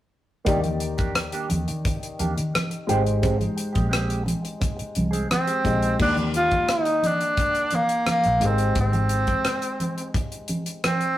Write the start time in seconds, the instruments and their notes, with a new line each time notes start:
0.45 fingered electric bass D#2, grand piano D#3 D#4 G4 D5, clean electric guitar A#3 D4 G4, kick, closed hi-hat, low conga
0.63 muted clean electric guitar stroke, closed hi-hat, high conga
0.80 muted clean electric guitar stroke, closed hi-hat
0.98 clean electric guitar A#3 D4 G4, kick, closed hi-hat, high conga
1.15 cross-stick, closed hi-hat, muted conga
1.32 clean electric guitar A#3 D4 G4, closed hi-hat
1.50 fingered electric bass D#2, closed hi-hat, muted conga, high conga
1.68 fingered electric bass D#3, muted clean electric guitar stroke, closed hi-hat
1.85 muted clean electric guitar stroke, kick, closed hi-hat, muted conga, low conga
2.03 closed hi-hat
2.19 fingered electric bass D#2, clean electric guitar A#3 D4 G4, closed hi-hat, muted conga, high conga
2.37 fingered electric bass D#3, closed hi-hat
2.54 muted clean electric guitar stroke, cross-stick, closed hi-hat, high conga
2.70 muted clean electric guitar stroke, closed hi-hat
2.87 fingered electric bass G#1, clean electric guitar G#3 C4 G4, grand piano G#3 D#4 G4 C5, closed hi-hat, muted conga, low conga
3.05 muted clean electric guitar stroke, closed hi-hat
3.22 clean electric guitar G#3 C4 G4, kick, closed hi-hat, muted conga, low conga
3.39 muted clean electric guitar stroke, closed hi-hat, high conga
3.56 muted clean electric guitar stroke, closed hi-hat
3.73 fingered electric bass A#1, clean electric guitar G#3 C4 G4, kick, closed hi-hat, high conga
3.89 clean electric guitar G#3 C4 G4, closed hi-hat, muted conga
3.93 cross-stick
4.10 closed hi-hat
4.24 muted clean electric guitar stroke, closed hi-hat, muted conga, high conga
4.42 muted clean electric guitar stroke, closed hi-hat
4.60 muted clean electric guitar stroke, kick, closed hi-hat, muted conga, low conga
4.77 muted clean electric guitar stroke, muted fingered electric bass stroke, closed hi-hat
4.95 fingered electric bass C2, closed hi-hat, muted conga, high conga
5.11 clean electric guitar G#3 C4 G#4, closed hi-hat
5.29 tenor saxophone C4, muted clean electric guitar stroke, cross-stick, closed hi-hat, muted conga, high conga
5.46 clean electric guitar G#3 C4 G4, closed hi-hat
5.64 fingered electric bass A#1, grand piano G#3 D#4 G4 D#5, kick, closed hi-hat, muted conga, low conga
5.83 closed hi-hat
5.99 fingered electric bass D#2, grand piano D#3 A#3 G4 D5, tenor saxophone D4, kick, crash, muted conga, low conga
6.16 closed hi-hat, high conga
6.34 tenor saxophone F4, closed hi-hat
6.51 kick, closed hi-hat, high conga
6.68 tenor saxophone D#4, cross-stick, closed hi-hat
6.85 closed hi-hat
7.03 tenor saxophone D4, closed hi-hat, muted conga, high conga
7.21 closed hi-hat
7.37 kick, closed hi-hat, muted conga, low conga
7.55 closed hi-hat
7.71 closed hi-hat, muted conga, high conga
7.75 tenor saxophone A#3
7.89 closed hi-hat
8.06 tenor saxophone A#3, cross-stick, closed hi-hat, muted conga, high conga
8.24 fingered electric bass A#1, closed hi-hat
8.40 fingered electric bass G#1, grand piano G#3 D#4 G4 A#4, cross-stick, closed hi-hat, low conga
8.46 tenor saxophone C4
8.50 grand piano C5
8.58 closed hi-hat
8.75 fingered electric bass G#1, kick, closed hi-hat, muted conga, low conga
8.80 tenor saxophone C4
8.93 closed hi-hat, high conga
9.09 closed hi-hat, muted conga
9.27 kick, closed hi-hat, high conga
9.45 cross-stick, closed hi-hat, muted conga
9.62 closed hi-hat
9.80 closed hi-hat, high conga
9.98 closed hi-hat
10.14 kick, closed hi-hat, muted conga, low conga
10.32 closed hi-hat
10.48 closed hi-hat, high conga
10.66 closed hi-hat
10.84 tenor saxophone C4, cross-stick, closed hi-hat, muted conga, high conga
11.01 closed hi-hat